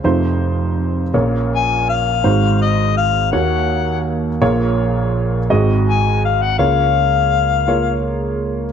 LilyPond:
<<
  \new Staff \with { instrumentName = "Harmonica" } { \time 6/8 \key bes \minor \tempo 4. = 55 r2 aes''8 f''8~ | f''8 ees''8 f''8 ges''4 r8 | r2 aes''8 f''16 ges''16 | f''2 r4 | }
  \new Staff \with { instrumentName = "Upright piano" } { \time 6/8 \key bes \minor <a ees' f' c''>4. <bes des' f' des''>4. | <aes ees' ges' c''>4. <bes ees' ges' des''>4. | <bes f' aes' des''>4. <c' ges' aes' ees''>4. | <bes f' aes' des''>4. <bes f' aes' des''>4. | }
  \new Staff \with { instrumentName = "Upright piano" } { \clef bass \time 6/8 \key bes \minor <f,, f,>4. <bes,, bes,>4. | <aes,, aes,>4. <ees, ees>4. | <bes,, bes,>4. <aes,, aes,>4. | <des, des>2. | }
  \new Staff \with { instrumentName = "Fretless electric bass" } { \clef bass \time 6/8 \key bes \minor f,4. bes,,4. | aes,,4. ees,4. | bes,,4. aes,,4. | des,2. | }
>>